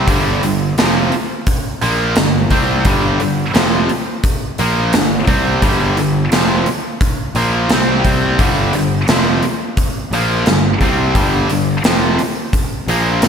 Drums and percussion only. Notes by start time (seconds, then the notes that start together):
0.08 kick, open hi-hat
0.43 open hi-hat
0.78 snare, open hi-hat
1.12 open hi-hat
1.47 kick, open hi-hat
1.82 open hi-hat
2.16 snare, open hi-hat
2.50 kick, open hi-hat
2.85 kick, open hi-hat
3.20 open hi-hat
3.55 snare, open hi-hat
3.89 open hi-hat
4.24 kick, open hi-hat
4.58 open hi-hat
4.93 snare, open hi-hat
5.27 kick, open hi-hat
5.62 kick, open hi-hat
5.97 open hi-hat
6.32 snare, open hi-hat
6.66 open hi-hat
7.01 kick, open hi-hat
7.35 open hi-hat
7.69 snare, open hi-hat
8.05 kick, open hi-hat
8.39 kick, open hi-hat
8.73 open hi-hat
9.08 snare, open hi-hat
9.43 open hi-hat
9.77 kick, open hi-hat
10.13 open hi-hat
10.46 snare, open hi-hat
10.81 kick, open hi-hat
11.15 kick, open hi-hat
11.50 open hi-hat
11.84 snare, open hi-hat
12.19 open hi-hat
12.53 kick, open hi-hat
12.88 open hi-hat
13.22 snare, open hi-hat